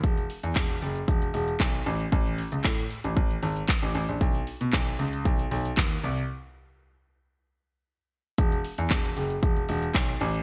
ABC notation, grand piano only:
X:1
M:4/4
L:1/16
Q:1/4=115
K:E
V:1 name="Grand piano" clef=bass
E,,,2 z E,, E,,,2 F,,,2 E,,,2 E,,,2 B,,,2 A,,,2 | A,,,3 C,, A,,2 z A,,, A,,,2 G,,,2 z A,,, A,,, ^A,,, | B,,,2 z B,, B,,,2 C,,2 B,,,2 B,,,2 D,,2 =C,,2 | z16 |
E,,,2 z E,, E,,,2 F,,,2 E,,,2 E,,,2 B,,,2 A,,,2 |]